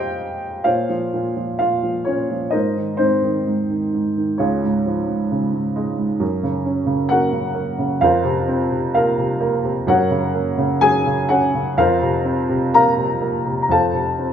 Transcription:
Already playing: F2 C4 G4 C5 D#5 F5 G5 G#5
0.64 A#2 F4 C5 C#5 F5
0.89 F3
1.14 A#2
1.36 F3
1.59 A#2 F4 F5
1.83 F3
2.05 A#2 C#4 C#5
2.31 F3
2.51 G#2 D#4 A#4 C5 D#5
2.77 D#3
2.97 G#2 C4 D#4 C5
3.24 D#3
3.47 G#2
3.70 D#3
3.93 G#2
4.17 D#3
4.38 C#2 C#4 F4 G#4 C#5
4.64 G#2
4.86 F3
5.09 G#2
5.31 C#3
5.54 G#2
5.76 G#3
5.98 G#2
6.20 F#2
6.43 C#3
6.65 C#4
6.86 C#3
7.09 A#3 F#4 A#4 F#5
7.33 C#3
7.55 A#3
7.78 C#3
8.01 F2 F4 A#4 C5 F5
8.24 C3
8.48 C4
8.71 C3
8.94 A#3 F4 A#4 F5
9.18 C3
9.40 A#3
9.64 C3
9.87 F#2 F#4 A#4 C#5 F#5
10.10 C#3
10.34 A#3
10.58 C#3
10.81 F#3 G#4 G#5
11.06 C#3
11.29 C#4 F#4 F#5
11.55 C#3
11.78 F2 F4 A#4 C5 F5
12.02 C3
12.25 C4
12.49 C3
12.73 A#3 A#4 F5 A#5
12.98 C3
13.22 A#3
13.46 C3
13.62 A#5
13.69 F2 A4 C5 F5 A5
13.93 C3
14.19 C4

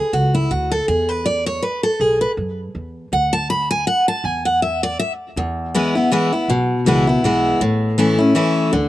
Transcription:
Already playing: G#4
0.13 C#2 F#4
0.35 E4
0.51 D2 F#4
0.72 A4
0.88 E2 G#4
1.09 B4
1.26 D5
1.46 C#5
1.62 B4
1.83 A4
2.00 B1 G#4
2.21 B4
2.37 F#2
2.75 E2
3.12 D2 F#5
3.33 A5
3.50 B5
3.71 G#5
3.87 F#5
4.08 A5
4.24 E2 G#5
4.45 F#5
4.62 E5
4.83 D5
4.99 E5
5.36 E2
5.75 E3 G#3 B3 E4
5.95 B3 E4
6.12 E3 G#3 B3 E4
6.33 B3 E4
6.48 B1 B2
6.85 C#2 E3 G#3 B3 E4
7.07 B3 E4
7.23 B1 E3 G#3 B3 E4
7.61 A1 A2
7.98 E3 A3 C#4 E4
8.19 C#4 E4
8.35 E3 A3 C#4 E4
8.73 D2 D3

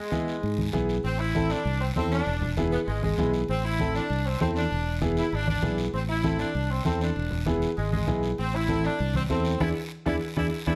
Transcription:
Already playing: G#3
0.11 B3 E4 G#4, high conga, short guiro
0.28 short guiro
0.43 G#2, long guiro
0.58 high conga
0.73 B1 B3 E4 G#4, high conga, short guiro
0.89 short guiro
1.04 A1 C4, long guiro
1.19 E4
1.35 C4 E4 A4, high conga, short guiro
1.50 D4, short guiro
1.65 C2, long guiro
1.81 C4
1.96 E2 C4 E4 A4, high conga, short guiro
2.12 D4, short guiro
2.27 E1, long guiro
2.42 low conga
2.57 B3 E4 G#4, high conga, short guiro
2.72 B3, short guiro
2.87 G#1 G#3, long guiro
3.03 G#3, high conga
3.18 B1 B3 E4 G#4, high conga, low conga, short guiro
3.34 short guiro
3.48 A1 C4, long guiro
3.65 E4
3.79 C4 E4 A4, high conga, short guiro
3.95 D4, short guiro
4.10 C2, long guiro
4.26 C4
4.40 E2 C4 E4 A4, high conga, short guiro
4.56 D4, short guiro
4.71 E1, long guiro
5.01 B3 E4 G#4, high conga, short guiro
5.17 E4, short guiro
5.32 G#1 D4, long guiro
5.47 D4, high conga
5.62 B1 B3 E4 G#4, high conga, low conga, short guiro
5.78 short guiro
5.93 A1 C4, long guiro
6.09 E4
6.24 C4 E4 A4, high conga, short guiro
6.39 D4, short guiro
6.55 C2, long guiro
6.71 C4
6.85 E2 C4 E4 A4, high conga, short guiro
7.01 D4, short guiro
7.16 E1, long guiro
7.31 low conga
7.46 B3 E4 G#4, high conga, short guiro
7.62 short guiro
7.77 G#1 G#3, long guiro
7.92 G#3, high conga
8.07 B1 B3 E4 G#4, high conga, low conga, short guiro
8.23 short guiro
8.38 A1 C4, long guiro
8.55 E4
8.68 C4 E4 A4, high conga, short guiro
8.84 D4, short guiro
8.99 C2, long guiro
9.14 C4, high conga
9.29 E2 C4 E4 A4, high conga, short guiro
9.45 short guiro
9.60 E2 B3 D4 E4 G#4, high conga, long guiro
10.06 E2 B3 D4 E4 G#4, high conga, long guiro
10.36 E2 B3 D4 E4 G#4, high conga, long guiro
10.67 E2 B3 D4 E4 G#4, high conga, long guiro

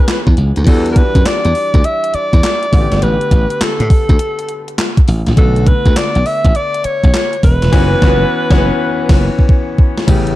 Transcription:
Already playing: E3 B3 C#4 G#4 B4
0.08 snare, clap, closed hi-hat
0.27 E2, kick
0.37 C#2, closed hi-hat
0.56 D2, closed hi-hat
0.66 E2 E3 G3 D4 F#4 A4, kick, closed hi-hat, crash
0.86 closed hi-hat
0.92 A#4
0.96 B4, kick, closed hi-hat
1.15 F#2, kick, closed hi-hat
1.25 D5, snare, clap, closed hi-hat
1.45 E2, closed hi-hat
1.55 open hi-hat
1.74 D2, kick, closed hi-hat
1.84 E5, closed hi-hat
2.04 closed hi-hat
2.14 D5, muted slap bass stroke, closed hi-hat
2.33 E2, kick, closed hi-hat
2.43 snare, clap, closed hi-hat
2.63 closed hi-hat
2.72 A1 D3 A3 B3 F#4, kick, open hi-hat
2.81 G4
2.92 G1, snare, closed hi-hat
3.02 A1 B4, closed hi-hat
3.21 closed hi-hat
3.31 A1, kick, closed hi-hat
3.50 closed hi-hat
3.61 A4, muted slap bass stroke, snare, clap, closed hi-hat
3.80 A2, closed hi-hat
3.90 kick, open hi-hat
4.09 D2, kick, closed hi-hat
4.19 closed hi-hat
4.39 closed hi-hat
4.49 closed hi-hat
4.68 closed hi-hat
4.78 snare, clap, closed hi-hat
4.97 kick, closed hi-hat
5.08 A1, open hi-hat
5.26 A1, snare, closed hi-hat
5.37 B1 D3 A3 B3 F#4 A4, kick, closed hi-hat
5.56 closed hi-hat
5.67 B4, kick, closed hi-hat
5.86 D2, kick, closed hi-hat
5.96 D5, snare, clap, closed hi-hat
6.15 B1, closed hi-hat
6.26 E5, open hi-hat
6.45 A1, kick, closed hi-hat
6.55 D5, closed hi-hat
6.74 closed hi-hat
6.84 C#5, muted slap bass stroke, closed hi-hat
7.04 B1, kick, closed hi-hat
7.14 snare, clap, closed hi-hat
7.33 closed hi-hat
7.43 E1 B4, kick, open hi-hat
7.62 E1, snare, closed hi-hat
7.72 E3 C#4 F#4, kick, snare, crash
7.79 B3
8.01 F#1 E3 C#4 F#4, kick, snare
8.09 B3
8.50 F#1 E3 C#4 F#4, kick, snare
8.57 B3
9.09 F#1, kick, snare, crash
9.39 kick
9.49 kick
9.78 kick
9.98 snare
10.07 A1 C#3 A3 B3 G4, kick, closed hi-hat, crash, tambourine
10.27 closed hi-hat

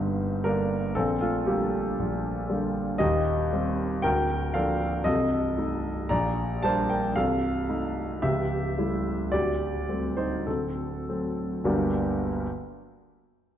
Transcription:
Already playing: G1 G2 D3 G3 A#3 D#4 C5
0.44 D3 G3 A#3 D4 A#4
0.95 A#1 A#2 C4 A4
1.21 A3 F4
1.47 D3 G3 A#3 G4
1.99 A#1 A#2
2.49 D3 G3 A#3
2.98 D#1 D#2 G4 D#5
3.53 G3 C4
4.02 D1 D2 A#4 G5
4.54 F3 A#3 D4 A4 F5
5.04 C1 C2 A4 D#5
5.57 A3 D#4
6.09 A#1 A#2 D5 A#5
6.63 G3 A#3 D4 C5 A5
6.90 A#4 G5
7.16 C1 C2 A4 F5
7.69 A3 D#4
8.22 C#1 C#2 G4 E5
8.78 G3 A3 E4
9.32 D1 D2 G4 D5
9.89 G3 A3 C4
10.17 D#4 C5
10.47 D1 D2 C4 A4
11.09 F#3 A3 C4
11.64 G1 D2 G3 A#3 D4 G4 A#4

